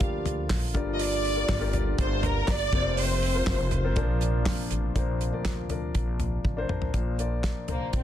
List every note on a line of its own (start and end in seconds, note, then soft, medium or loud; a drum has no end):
0.00 0.47 D2 loud
0.00 0.75 D3 medium
0.00 2.69 D3 medium
0.00 0.73 F3 medium
0.00 0.48 G3 medium
0.00 2.69 A#3 medium
0.00 0.77 D4 medium
0.00 0.74 F4 medium
0.00 3.93 F4 medium
0.00 0.49 G4 medium
0.00 0.75 A#4 medium
0.00 0.76 D5 medium
0.00 kick loud
0.00 hi-hat pedal medium
0.00 open hi-hat medium
0.26 floor tom medium
0.26 hi-hat pedal medium
0.26 open hi-hat medium
0.50 0.75 A#1 loud
0.50 kick loud
0.50 snare loud
0.50 clap medium
0.50 hi-hat pedal medium
0.50 open hi-hat medium
0.74 1.45 G1 loud
0.74 1.45 G2 medium
0.74 1.45 D3 medium
0.74 1.48 F3 medium
0.74 2.71 G3 medium
0.74 1.30 F4 medium
0.74 1.48 F4 medium
0.74 1.31 G4 medium
0.74 1.31 A#4 medium
0.74 1.31 D5 medium
0.74 kick loud
0.74 hi-hat pedal medium
0.74 open hi-hat medium
0.93 1.00 D#5 medium
0.99 1.74 D5 loud
0.99 hi-hat pedal medium
0.99 open hi-hat loud
1.24 hi-hat pedal medium
1.24 open hi-hat medium
1.36 1.58 F4 medium
1.36 1.59 G4 medium
1.36 1.59 A#4 medium
1.36 1.59 D5 medium
1.49 1.95 G1 loud
1.49 kick loud
1.49 snare loud
1.49 clap medium
1.49 hi-hat pedal medium
1.49 open hi-hat medium
1.60 2.50 F4 medium
1.60 2.50 G4 medium
1.60 2.51 A#4 medium
1.60 2.51 D5 loud
1.73 2.46 D3 medium
1.73 2.46 D4 medium
1.73 floor tom medium
1.73 hi-hat pedal medium
1.73 open hi-hat medium
1.98 2.45 G1 loud
1.98 2.23 C5 medium
1.98 kick loud
1.98 hi-hat pedal medium
1.98 open hi-hat medium
2.23 2.49 A#4 loud
2.23 floor tom medium
2.23 hi-hat pedal medium
2.23 open hi-hat medium
2.48 2.71 G1 medium
2.48 2.98 D5 loud
2.48 kick loud
2.48 snare loud
2.48 clap medium
2.48 hi-hat pedal medium
2.48 open hi-hat medium
2.72 3.43 F1 loud
2.72 3.70 C3 medium
2.72 3.43 C3 medium
2.72 4.94 C3 medium
2.72 4.94 F3 medium
2.72 4.94 A#3 medium
2.72 3.28 C4 medium
2.72 3.70 C4 loud
2.72 3.29 F4 medium
2.72 3.29 A#4 medium
2.72 3.29 C5 medium
2.72 kick loud
2.72 hi-hat pedal medium
2.72 open hi-hat medium
2.97 3.97 C5 loud
2.97 hi-hat pedal medium
2.97 open hi-hat loud
3.22 hi-hat pedal medium
3.22 open hi-hat medium
3.34 3.79 C4 medium
3.34 3.79 F4 medium
3.34 3.80 A#4 medium
3.34 3.80 C5 medium
3.47 3.97 F1 loud
3.47 kick loud
3.47 snare loud
3.47 clap medium
3.47 hi-hat pedal medium
3.47 open hi-hat medium
3.71 floor tom medium
3.71 hi-hat pedal medium
3.71 open hi-hat medium
3.84 3.97 C4 medium
3.84 3.95 F4 medium
3.84 3.95 A#4 medium
3.84 3.96 C5 medium
3.96 4.43 A#1 medium
3.96 4.70 A#2 medium
3.96 4.67 A#2 medium
3.96 4.67 F3 medium
3.96 4.69 A#3 medium
3.96 4.86 D4 loud
3.96 4.94 D4 medium
3.96 4.86 F4 medium
3.96 4.86 A#4 medium
3.96 4.86 C5 loud
3.96 kick loud
3.96 hi-hat pedal medium
3.96 open hi-hat medium
4.21 hi-hat pedal medium
4.21 open hi-hat medium
4.46 kick loud
4.46 snare loud
4.46 clap medium
4.46 hi-hat pedal medium
4.46 open hi-hat loud
4.71 4.94 A1 medium
4.71 hi-hat pedal medium
4.71 open hi-hat medium
4.95 5.30 A#1 medium
4.95 5.66 A#2 medium
4.95 6.92 C3 medium
4.95 6.92 F3 medium
4.95 5.66 F3 medium
4.95 6.92 A#3 medium
4.95 5.29 D4 medium
4.95 6.92 D4 medium
4.95 5.29 A#4 medium
4.95 5.29 C5 medium
4.95 kick medium
4.95 closed hi-hat loud
5.21 closed hi-hat medium
5.32 5.92 D2 medium
5.32 5.66 D4 medium
5.32 5.67 A#4 medium
5.32 5.67 D5 medium
5.45 kick medium
5.45 snare medium
5.45 clap medium
5.45 closed hi-hat medium
5.70 6.48 D4 medium
5.70 6.49 A#4 medium
5.70 6.49 D5 medium
5.70 closed hi-hat medium
5.70 floor tom medium
5.95 6.41 A#1 medium
5.95 kick loud
5.95 closed hi-hat medium
6.20 closed hi-hat medium
6.20 floor tom medium
6.45 6.68 A1 medium
6.45 kick loud
6.45 high tom soft
6.57 6.67 D4 medium
6.57 6.68 A#4 medium
6.57 6.69 C5 loud
6.68 6.92 A1 medium
6.68 6.91 D4 medium
6.68 6.92 A#4 medium
6.68 6.92 C5 medium
6.68 mid tom medium
6.82 floor tom medium
6.93 7.53 A#1 medium
6.93 7.65 A#2 medium
6.93 7.65 F3 medium
6.93 7.16 D4 medium
6.93 7.17 A#4 medium
6.93 7.17 C5 medium
6.93 kick medium
6.93 closed hi-hat medium
7.19 7.64 D4 medium
7.19 7.64 A#4 medium
7.19 7.64 D5 medium
7.19 closed hi-hat medium
7.44 kick medium
7.44 snare medium
7.44 clap medium
7.44 closed hi-hat medium
7.67 7.92 C2 medium
7.67 7.92 A#3 medium
7.67 8.03 D4 medium
7.67 8.03 A#4 medium
7.67 8.03 C5 medium
7.67 closed hi-hat medium
7.67 floor tom medium
7.93 8.03 A#1 medium
7.93 8.03 C4 medium
7.93 kick loud
7.93 closed hi-hat medium